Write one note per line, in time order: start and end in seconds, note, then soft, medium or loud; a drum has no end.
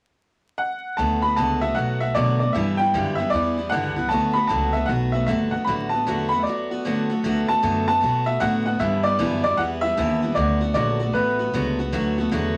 0.58 0.99 F#5 loud
0.97 1.36 D2 medium
0.97 1.23 D3 medium
0.97 1.24 F#3 medium
0.97 1.24 A3 medium
0.97 1.23 B3 medium
0.97 1.22 F#4 medium
0.97 1.21 A5 medium
1.22 1.37 A3 soft
1.22 1.37 B3 soft
1.22 1.37 F#4 medium
1.22 1.36 B5 loud
1.36 1.76 C#2 medium
1.36 1.62 D3 medium
1.36 1.63 F#3 medium
1.36 1.63 A3 medium
1.36 1.62 B3 medium
1.36 1.61 F#4 medium
1.36 1.63 A5 medium
1.61 1.76 A3 soft
1.61 1.77 B3 soft
1.61 1.76 F#4 medium
1.61 1.76 E5 loud
1.75 2.15 B1 medium
1.75 2.01 F#3 medium
1.75 2.02 A3 medium
1.75 2.01 B3 medium
1.75 2.02 F#5 medium
1.79 2.00 F#4 medium
2.00 2.15 A3 soft
2.00 2.15 B3 soft
2.00 2.15 F#4 medium
2.00 2.15 E5 loud
2.14 2.54 B2 loud
2.14 2.41 D3 medium
2.14 2.41 F#3 medium
2.14 2.41 A3 medium
2.14 2.41 B3 medium
2.14 2.39 F#4 medium
2.14 2.38 D5 loud
2.39 2.55 A3 soft
2.39 2.54 B3 soft
2.39 2.54 F#4 soft
2.39 2.53 D5 medium
2.53 2.80 G2 medium
2.53 2.93 G2 medium
2.53 2.80 D3 medium
2.53 2.80 E3 medium
2.53 2.80 G3 medium
2.53 2.79 B3 medium
2.53 2.78 E4 medium
2.53 2.77 E5 medium
2.77 2.94 G3 soft
2.77 2.94 B3 soft
2.77 2.94 E4 medium
2.77 3.19 G5 medium
2.82 2.94 E3 soft
2.94 3.32 F#2 medium
2.94 3.19 G2 medium
2.94 3.19 D3 medium
2.94 3.19 E3 medium
2.94 3.19 G3 medium
2.94 3.18 B3 medium
2.94 3.17 E4 medium
3.15 3.33 B3 medium
3.15 3.33 E4 medium
3.15 3.30 E5 loud
3.20 3.32 E3 soft
3.20 3.33 G3 soft
3.30 3.71 E2 medium
3.30 3.58 E3 medium
3.30 3.58 G3 medium
3.30 3.72 D5 loud
3.35 3.57 B3 medium
3.35 3.56 E4 medium
3.58 3.72 E3 soft
3.58 3.72 G3 soft
3.58 3.72 B3 soft
3.58 3.72 E4 soft
3.70 4.10 C#2 medium
3.70 3.97 G2 medium
3.70 3.97 D3 medium
3.70 3.98 E3 medium
3.70 3.97 G3 medium
3.70 3.96 B3 medium
3.70 4.07 F#5 loud
3.74 3.95 E4 medium
3.96 4.11 E3 soft
3.96 4.11 G3 soft
3.96 4.11 B3 soft
3.96 4.11 E4 medium
4.09 4.49 D2 medium
4.09 4.36 D3 medium
4.09 4.36 F#3 medium
4.09 4.36 A3 medium
4.09 4.36 B3 medium
4.09 4.34 F#4 medium
4.09 4.36 A5 loud
4.33 4.49 B3 soft
4.33 4.50 F#4 medium
4.33 4.49 B5 medium
4.37 4.49 A3 soft
4.47 4.88 C#2 medium
4.47 4.75 D3 medium
4.47 4.75 F#3 medium
4.47 4.76 A3 medium
4.47 4.74 B3 medium
4.47 4.73 F#4 medium
4.47 4.75 A5 medium
4.73 4.88 B3 medium
4.73 4.89 F#4 medium
4.73 4.87 E5 medium
4.77 4.88 A3 soft
4.86 5.27 B1 medium
4.86 5.14 F#3 medium
4.86 5.15 A3 medium
4.86 5.13 B3 medium
4.86 4.92 F#5 medium
4.90 5.12 F#4 medium
5.12 5.27 A3 soft
5.12 5.28 B3 soft
5.12 5.28 F#4 medium
5.12 5.25 E5 medium
5.26 5.52 G1 medium
5.26 5.53 D3 medium
5.26 5.53 F#3 medium
5.26 5.54 A3 medium
5.26 5.53 B3 medium
5.26 5.51 F#4 medium
5.26 5.32 E5 medium
5.51 5.68 B3 soft
5.51 5.67 F#4 soft
5.51 5.67 F#5 medium
5.51 muted upright bass stroke soft
5.55 5.67 A3 soft
5.64 6.05 A1 medium
5.64 5.93 D3 medium
5.64 5.93 F#3 medium
5.64 5.70 B5 medium
5.68 5.93 A3 medium
5.68 5.93 B3 medium
5.68 5.92 F#4 medium
5.89 6.07 F#4 soft
5.89 6.31 A5 medium
5.94 6.07 A3 soft
5.94 6.07 B3 soft
6.06 6.44 E2 medium
6.06 6.32 D3 medium
6.06 6.32 F#3 medium
6.06 6.32 A3 medium
6.06 6.32 B3 medium
6.06 6.30 F#4 medium
6.29 6.46 F#4 medium
6.29 6.40 B5 medium
6.33 6.46 A3 soft
6.33 6.46 B3 soft
6.39 7.05 D5 medium
6.39 6.45 E5 soft
6.47 6.71 F#3 medium
6.47 6.72 A3 medium
6.47 6.71 B3 medium
6.47 6.70 F#4 medium
6.71 6.84 A3 soft
6.71 6.85 B3 soft
6.71 6.85 F#4 medium
6.85 7.10 D3 medium
6.85 7.10 F#3 medium
6.85 7.10 A3 medium
6.85 7.10 B3 medium
6.85 7.09 F#4 medium
7.10 7.24 A3 soft
7.10 7.24 B3 medium
7.10 7.24 F#4 medium
7.24 7.47 D2 medium
7.24 7.49 D3 medium
7.24 7.49 F#3 medium
7.24 7.50 A3 medium
7.24 7.49 B3 medium
7.24 7.48 F#4 loud
7.48 7.62 A3 soft
7.48 7.63 B3 medium
7.48 7.63 F#4 medium
7.48 7.86 A5 loud
7.48 muted upright bass stroke soft
7.63 8.01 F#2 loud
7.63 7.88 D3 medium
7.63 7.88 F#3 medium
7.63 7.88 A3 medium
7.63 7.88 B3 medium
7.63 7.86 F#4 medium
7.88 8.01 A3 soft
7.88 8.02 B3 medium
7.88 8.02 F#4 medium
7.88 8.28 A5 loud
8.01 8.40 B2 medium
8.01 8.27 F#3 medium
8.01 8.27 A3 medium
8.01 8.27 B3 medium
8.01 8.25 F#4 medium
8.26 8.40 A3 soft
8.26 8.40 B3 soft
8.26 8.41 F#4 medium
8.26 8.41 E5 loud
8.40 8.79 A2 loud
8.40 8.66 D3 medium
8.40 8.66 F#3 medium
8.40 8.66 A3 medium
8.40 8.66 B3 medium
8.40 8.65 F#4 medium
8.40 8.64 F#5 loud
8.66 8.80 A3 soft
8.66 8.80 B3 medium
8.66 8.80 F#4 medium
8.66 8.80 F#5 medium
8.79 9.05 G2 medium
8.79 9.18 G2 medium
8.79 9.05 D3 medium
8.79 9.05 E3 medium
8.79 9.05 G3 medium
8.79 9.04 B3 medium
8.79 9.04 E4 medium
8.79 9.06 E5 medium
9.03 9.18 E3 soft
9.03 9.18 G3 soft
9.03 9.19 B3 medium
9.03 9.19 E4 soft
9.03 9.42 D5 loud
9.19 9.57 F#2 loud
9.19 9.44 G2 medium
9.19 9.44 D3 medium
9.19 9.44 E3 medium
9.19 9.45 G3 medium
9.19 9.43 B3 medium
9.19 9.43 E4 medium
9.44 9.56 E3 medium
9.44 9.58 G3 medium
9.44 9.58 B3 medium
9.44 9.58 E4 medium
9.44 9.58 D5 loud
9.57 9.96 E2 medium
9.57 9.83 E3 medium
9.57 9.84 G3 medium
9.57 9.83 B3 medium
9.57 9.82 E4 medium
9.57 9.63 F#5 loud
9.81 9.97 G3 soft
9.81 9.97 B3 medium
9.81 9.97 E4 medium
9.81 10.31 E5 loud
9.86 9.97 E3 soft
9.97 10.35 D#2 loud
9.97 10.22 G2 medium
9.97 10.22 D3 medium
9.97 10.23 E3 medium
9.97 10.23 G3 medium
9.97 10.22 B3 medium
9.97 10.21 E4 loud
10.22 10.36 E3 soft
10.22 10.36 G3 soft
10.22 10.36 B3 medium
10.22 10.36 E4 medium
10.35 10.74 D2 medium
10.35 10.61 D3 medium
10.35 10.61 F#3 medium
10.35 10.62 A3 medium
10.35 10.61 B3 medium
10.35 10.59 F#4 medium
10.35 10.73 D5 medium
10.61 10.74 A3 soft
10.61 10.74 B3 medium
10.61 10.75 F#4 medium
10.74 11.13 A#1 loud
10.74 11.00 D3 medium
10.74 11.00 F#3 medium
10.74 11.00 A3 medium
10.74 11.00 B3 medium
10.74 10.99 F#4 medium
10.74 11.11 D5 medium
11.00 11.13 A3 soft
11.00 11.14 B3 medium
11.00 11.14 F#4 medium
11.13 11.52 A1 medium
11.13 11.39 F#3 medium
11.13 11.40 A3 medium
11.13 11.39 B3 medium
11.13 11.38 F#4 medium
11.13 12.27 B4 medium
11.39 11.53 A3 soft
11.39 11.53 B3 medium
11.39 11.53 F#4 medium
11.54 11.91 C#2 medium
11.54 11.79 D3 medium
11.54 11.79 F#3 medium
11.54 11.79 A3 medium
11.54 11.79 B3 medium
11.54 11.78 F#4 medium
11.79 11.92 A3 medium
11.79 11.93 B3 soft
11.79 11.93 F#4 medium
11.92 12.30 D2 medium
11.92 12.18 D3 medium
11.92 12.18 F#3 medium
11.92 12.18 A3 medium
11.92 12.18 B3 medium
11.92 12.17 F#4 medium
12.18 12.31 A3 medium
12.18 12.32 B3 medium
12.18 12.32 F#4 medium
12.31 12.57 E2 loud
12.31 12.57 D3 medium
12.31 12.57 F#3 medium
12.31 12.57 A3 medium
12.31 12.57 B3 medium
12.31 12.56 F#4 loud